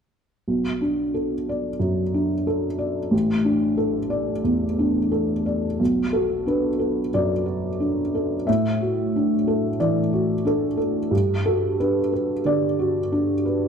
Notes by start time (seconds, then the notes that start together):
0.48 B1
0.81 D4
1.14 A4
1.49 D5
1.79 F#2
2.14 D4
2.47 A4
2.78 D5
3.11 A1
3.44 D4
3.77 A4
4.10 D5
4.44 E2
4.79 D4
5.12 A4
5.46 D5
5.79 B1
6.13 F#4 A4
6.46 D4 B4
6.79 A4
7.14 F#2 D5
7.46 F#4
7.80 D4
8.15 A4
8.47 A2 E5
8.81 F#4
9.16 D4
9.47 A4
9.80 E3 D5
10.13 F#4
10.45 D4 A4
10.77 A4
11.11 G2
11.46 F#4 A4
11.80 D4 B4
12.12 B4
12.45 D3 D5
12.79 F#4
13.12 D4
13.46 B4